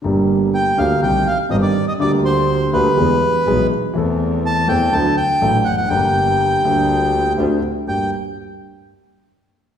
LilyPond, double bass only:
\new Staff \with { instrumentName = "Double bass" } { \clef bass \time 4/4 \key g \minor \tempo 4 = 123 g,,4. d,8 c,8 r8 g,,8 r8 | d,4. d,8 e,8 r8 b,,8 r8 | e,4. e,8 d,8 r8 a,,8 f,,8 | g,,4. d,4. d,8 r8 |
g,,8 r2. r8 | }